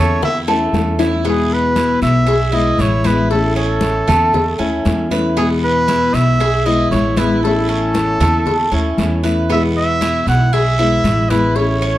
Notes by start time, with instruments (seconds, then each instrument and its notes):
Already playing: upright bass E2, nylon-string guitar E3 A3 C#4 E4, cuban tres A3, trumpet C#5
0.22 cuban tres E4, trumpet E5, muted nylon-string guitar stroke, high bongo, high conga, low conga, long guiro
0.48 cuban tres A3, nylon-string guitar A3 C#4 E4, high bongo, high conga
0.73 upright bass E2, nylon-string guitar E3 A3 C#4 E4, high bongo, high conga, short guiro
0.99 nylon-string guitar A3 C#4 E4, cuban tres E4, low bongo, short guiro
1.23 nylon-string guitar B2 E3 G#3 B3 E4, cuban tres B3, cowbell, high conga, long guiro
1.28 trumpet G#4
1.51 trumpet B4, high conga
1.76 cuban tres E4, cowbell, high conga, short guiro
2.02 upright bass B1, trumpet E5, cowbell, high conga, short guiro
2.27 cuban tres G#4, muted nylon-string guitar stroke, cowbell, high conga, long guiro
2.52 nylon-string guitar E3 G#3 B3 E4, cuban tres E4, trumpet D#5, high conga
2.78 upright bass A1, nylon-string guitar E3 G#3 B3 E4, trumpet C#5, cowbell, high conga, short guiro
3.04 nylon-string guitar G#3 B3 E4, cuban tres E4, trumpet B4, cowbell, high conga, short guiro
3.08 nylon-string guitar E3
3.30 nylon-string guitar E3 A3 C#4, trumpet A4, cowbell, long guiro
3.35 nylon-string guitar E4
3.56 cuban tres C#4, trumpet A4, high conga
3.81 cowbell, high conga, short guiro
4.08 upright bass E2, cuban tres A3, cowbell, high conga, low conga, short guiro
4.34 muted nylon-string guitar stroke, cowbell, high conga, low conga, long guiro
4.59 upright bass D#2, nylon-string guitar A3 C#4 E4, cuban tres C#4, high conga
4.85 upright bass E2, nylon-string guitar E3 A3 C#4 E4, cowbell, high conga, short guiro
5.10 nylon-string guitar A3 C#4 E4, cuban tres B4, high conga, short guiro
5.36 nylon-string guitar B2 E3 G#3 B3 E4, cuban tres B3, trumpet G#4, cowbell, high conga, long guiro
5.64 trumpet B4, high conga
5.88 cuban tres E4, cowbell, high conga, short guiro
6.14 upright bass B1, trumpet E5, cowbell, high conga, short guiro
6.40 cuban tres G#4, muted nylon-string guitar stroke, cowbell, high conga, long guiro
6.65 nylon-string guitar E3 G#3 B3 E4, cuban tres E4, trumpet D#5, high conga
6.91 upright bass A1, nylon-string guitar E3 G#3 B3 E4, trumpet C#5, cowbell, high conga, short guiro
7.17 nylon-string guitar E3 G#3 B3 E4, cuban tres E4, trumpet B4, cowbell, high conga, short guiro
7.43 nylon-string guitar E3 A3 C#4, trumpet A4, cowbell, high conga, long guiro
7.47 nylon-string guitar E4
7.69 cuban tres C#4, trumpet A4, high conga
7.94 cowbell, high conga, short guiro
8.20 upright bass E2, cuban tres A3, cowbell, high conga, low conga, short guiro
8.46 muted nylon-string guitar stroke, cowbell, high conga, low conga, long guiro
8.72 upright bass D#2, nylon-string guitar A3 C#4 E4, cuban tres C#4, high conga
8.98 upright bass E2, nylon-string guitar E3 A3 C#4 E4, cowbell, high conga, short guiro
9.24 nylon-string guitar A3 C#4 E4, cuban tres B4, short guiro
9.49 nylon-string guitar B2 E3 G#3 B3 E4, cuban tres B3, trumpet E5, cowbell, high conga, long guiro
9.76 trumpet E5, high conga
10.01 cuban tres E4, cowbell, high conga, short guiro
10.27 upright bass B1, trumpet F#5, cowbell, high conga, short guiro
10.53 cuban tres G#4, trumpet E5, muted nylon-string guitar stroke, cowbell, high conga, long guiro
10.79 nylon-string guitar E3 G#3 B3 E4, cuban tres E4, high conga
11.04 upright bass A1, nylon-string guitar E3 G#3 B3 E4, cowbell, high conga, short guiro
11.30 nylon-string guitar E3 G#3 B3 E4, cuban tres E4, trumpet B4, cowbell, high conga, short guiro
11.56 nylon-string guitar E3 A3 C#4, trumpet C#5, cowbell, high conga, long guiro
11.60 nylon-string guitar E4
11.82 cuban tres C#4, high conga